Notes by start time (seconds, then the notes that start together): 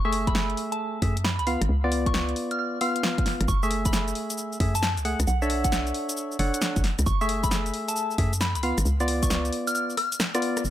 Already playing: F#1
0.05 A3 G#4 E5 C#6
0.13 cross-stick, open hi-hat
0.27 B5, kick, closed hi-hat
0.35 cross-stick, snare
0.50 closed hi-hat
0.57 open hi-hat
0.72 A5, closed hi-hat
1.02 F#2 A3 G#4 E5, kick, open hi-hat
1.17 closed hi-hat
1.24 B5, snare
1.39 C#2 B5, closed hi-hat
1.47 B3 F4 F5, open hi-hat
1.61 G#1, cross-stick, closed hi-hat
1.69 C#2
1.84 B3 F4 D5
1.92 cross-stick, open hi-hat
2.06 C#6, kick, closed hi-hat
2.14 cross-stick, snare
2.29 closed hi-hat
2.36 open hi-hat
2.51 F6, closed hi-hat
2.59 F6
2.81 B3 F4 F5 F6, open hi-hat
2.96 closed hi-hat
3.03 snare
3.18 kick, closed hi-hat
3.26 snare, open hi-hat
3.41 G#1, cross-stick, closed hi-hat
3.48 F#1 C#6, kick, cabasa
3.63 A3 G#4 E5 C#6, cabasa
3.71 cross-stick, open hi-hat
3.85 B5, kick, closed hi-hat, cabasa
3.93 cross-stick, snare, cabasa
4.08 closed hi-hat, cabasa
4.15 open hi-hat
4.30 closed hi-hat, cabasa
4.38 cabasa
4.53 cabasa
4.60 F#2 A3 G#4 E5, kick, open hi-hat
4.75 A5, closed hi-hat, cabasa
4.83 snare, cabasa
4.97 C#2, closed hi-hat, cabasa
5.05 A3 G#4 F#5, open hi-hat
5.20 C#2, cross-stick, closed hi-hat, cabasa
5.27 B1 F#5, cabasa
5.42 D4 A4 C#5 E5, cabasa
5.50 cross-stick, open hi-hat
5.64 F#5, kick, closed hi-hat, cabasa
5.72 cross-stick, snare, cabasa
5.87 closed hi-hat, cabasa
5.94 open hi-hat
6.09 closed hi-hat, cabasa
6.17 cabasa
6.32 cabasa
6.39 F#1 D4 A4 C#5 F#5, open hi-hat
6.54 closed hi-hat, cabasa
6.62 snare, cabasa
6.76 F#1, kick, closed hi-hat, cabasa
6.84 snare, open hi-hat
6.99 C#2, cross-stick, closed hi-hat, cabasa
7.06 F#1 C#6, kick, cabasa
7.21 A3 G#4 E5 C#6, cabasa
7.29 cross-stick, open hi-hat
7.43 B5, kick, closed hi-hat, cabasa
7.51 cross-stick, snare, cabasa
7.66 closed hi-hat, cabasa
7.74 open hi-hat
7.88 A5, closed hi-hat, cabasa
7.96 cabasa
8.11 cabasa
8.18 F#2 A3 G#4 E5, kick, open hi-hat
8.33 closed hi-hat, cabasa
8.41 B5, snare, cabasa
8.55 C#2 B5, closed hi-hat, cabasa
8.63 B3 F4 F5, open hi-hat
8.78 G#1, cross-stick, closed hi-hat, cabasa
8.85 C#2, cabasa
9.00 B3 F4 D5, closed hi-hat, cabasa
9.08 cross-stick, open hi-hat
9.23 C#6, kick, closed hi-hat, cabasa
9.30 cross-stick, snare, cabasa
9.45 closed hi-hat, cabasa
9.53 open hi-hat
9.67 F6, closed hi-hat, cabasa
9.75 F6, cabasa
9.90 cabasa
9.97 F6, cross-stick, open hi-hat
10.12 closed hi-hat, cabasa
10.20 cross-stick, snare, cabasa
10.35 B3 F4 D5, cross-stick, closed hi-hat, cabasa
10.42 open hi-hat
10.57 cross-stick, closed hi-hat, cabasa
10.65 F#1, cabasa